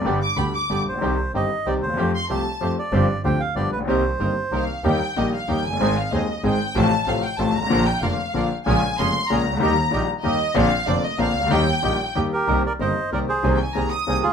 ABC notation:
X:1
M:3/4
L:1/16
Q:1/4=189
K:Cm
V:1 name="Violin section"
z2 d'2 =b2 d'3 z3 | z12 | z2 c'2 =a4- a z3 | z12 |
z8 f4 | [K:Eb] g4 e2 f2 g2 a2- | a2 f2 e4 g4 | =a4 f2 g2 a2 b2- |
b2 g2 f6 z2 | a4 c'4 b4 | b6 z2 e4 | f4 d2 e2 f4 |
g8 z4 | [K:Cm] z12 | z3/2 g/2 a2 b2 e'3 z3 |]
V:2 name="Bandoneon"
d2 z8 c2- | c4 e4 d2 c2- | c2 z8 d2- | d4 g2 f2 d2 =B2 |
c8- c2 z2 | [K:Eb] z12 | z12 | z12 |
z12 | z12 | z12 | z12 |
z8 z2 [GB]2- | [K:Cm] [GB]2 [Bd]2 [ce]4 [Bd]2 [Ac]2- | [Ac]2 z8 [FA]2 |]
V:3 name="Bandoneon"
[=B,DG]2 z2 [B,DG]2 z2 [B,DG]2 z2 | [CEG]2 z2 [CEG]2 z2 [CEG]2 z2 | [=A,FG]2 z2 [A,FG]2 z2 [A,FG]2 z2 | [CFG]2 z2 [CFG]2 z2 [=B,FG]2 z2 |
[CEB]2 z2 [CEB]2 z2 [CEB]2 z2 | [K:Eb] [B,EG]2 z2 [B,EG]2 z2 [B,EG]2 z2 | [CEA]2 z2 [CEA]2 z2 [CEA]2 z2 | [CF=A]2 z2 [CFA]2 z2 [CFA]2 z2 |
[DFB]2 z2 [DFB]2 z2 [DFB]2 z2 | [_DAB]2 z2 [DAB]2 z2 [DAB]2 z2 | [EGB]2 z2 [EGB]2 z2 [EGB]2 z2 | [CDB]2 z2 [CDB]2 z2 [CDB]2 z2 |
[B,EG]2 z2 [B,EG]2 z2 [B,EG]2 z2 | [K:Cm] [CEB]2 z2 [CEB]2 z2 [CEB]2 z2 | [B,CA]2 z2 [B,CA]2 z2 [B,CA]2 z2 |]
V:4 name="Grand piano" clef=bass
[G,,,G,,D,G,=B,G]2 z2 [D,,D,G,B,G]2 z2 [G,,,G,,D,G,B,G]2 z/2 =A,,,/2 _B,,,/2 =B,,,/2 | [C,,C,E,G,CG]2 z2 [G,,,G,,E,G,CG]2 z2 [C,,C,E,G,CG]2 z/2 D,,/2 E,,/2 =E,,/2 | [F,,F,=A,CG]2 z2 [C,,C,F,A,CG]2 z2 [F,,F,A,CG]2 z2 | [G,,,G,,F,CDG]2 z2 [D,,D,F,CDG]2 z2 [G,,,G,,F,=B,DG]2 z/2 =A,,,/2 _B,,,/2 =B,,,/2 |
[C,,C,E,B,CG]2 z2 [G,,,G,,E,B,CG]2 z2 [C,,C,E,B,CG]2 z2 | [K:Eb] [E,,E,G,B,G]2 z2 [B,,,B,,E,G,B,G]2 z2 [E,,E,G,B,G]2 z/2 F,,,/2 _G,,,/2 =G,,,/2 | [A,,,A,,E,A,CA]2 z2 [E,,,E,,E,A,CA]2 z2 [A,,,A,,E,A,CA]2 z2 | [=A,,,=A,,C,F,=A,F]2 z2 [A,,,A,,C,F,A,F]2 z2 [A,,,A,,C,F,A,F]2 z/2 G,,,/2 _A,,,/2 =A,,,/2 |
[B,,,B,,D,F,B,F]2 z2 [F,,,F,,D,F,B,F]2 z2 [B,,,B,,D,F,B,F]2 z2 | [B,,,B,,_D,A,B,F]2 z2 [F,,,F,,D,A,B,F]2 z2 [B,,,B,,D,A,B,F]2 z/2 C,,/2 _D,,/2 =D,,/2 | [E,,E,G,B,G]2 z2 [B,,,B,,E,G,B,G]2 z2 [E,,E,G,B,G]2 z2 | [B,,,B,,D,B,CF]2 z2 [F,,,F,,D,B,CF]2 z2 [B,,,B,,D,B,CF]2 z/2 C,,/2 _D,,/2 =D,,/2 |
[E,,E,G,B,G]2 z2 [B,,,B,,E,G,B,G]2 z2 [E,,E,G,B,G]2 z2 | [K:Cm] [C,,C,E,B,CG]2 z2 [G,,,G,,E,B,CG]2 z2 [C,,C,E,B,CG]2 z2 | [C,,C,E,B,CA]2 z2 [C,,C,E,B,CA]2 z2 [C,,C,E,B,CA]2 z/2 D,,/2 z |]
V:5 name="Double bass" clef=bass
G,,,2 z2 D,,2 z2 G,,,2 B,,,2 | C,,2 z2 G,,,2 z2 C,,2 E,,2 | F,,2 z2 C,,2 z2 F,,2 z2 | G,,,2 z2 D,,2 z2 G,,,2 B,,,2 |
C,,2 z2 G,,,2 z2 C,,2 z2 | [K:Eb] E,,2 z2 B,,,2 z2 E,,2 _G,,,2 | A,,,2 z2 E,,2 z2 A,,,2 z2 | =A,,,2 z2 A,,,2 z2 A,,,2 _A,,,2 |
B,,,2 z2 F,,,2 z2 B,,,2 z2 | B,,,2 z2 F,,,2 z2 B,,,2 _D,,2 | E,,2 z2 B,,,2 z2 E,,2 z2 | B,,,2 z2 F,,,2 z2 B,,,2 _D,,2 |
E,,2 z2 B,,,2 z2 E,,2 z2 | [K:Cm] C,,2 z2 G,,,2 z2 C,,2 z2 | C,,2 z2 C,,2 z2 C,,2 E,,2 |]